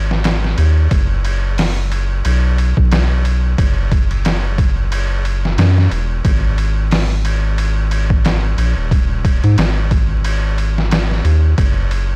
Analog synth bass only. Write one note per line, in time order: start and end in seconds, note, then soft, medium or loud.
0.00 0.55 G#1 medium
0.58 0.88 D#2 medium
0.91 2.22 F#1 loud
2.25 2.74 B1 medium
2.77 3.56 B1 medium
3.58 5.58 F#1 loud
5.58 5.88 F#2 loud
5.91 6.21 E1 loud
6.25 8.55 G#1 loud
8.58 8.75 A#1 medium
8.77 9.40 D#1 medium
9.44 9.56 G#2 medium
9.58 11.22 G#1 medium
11.25 11.55 D#2 medium
11.58 12.16 F#1 loud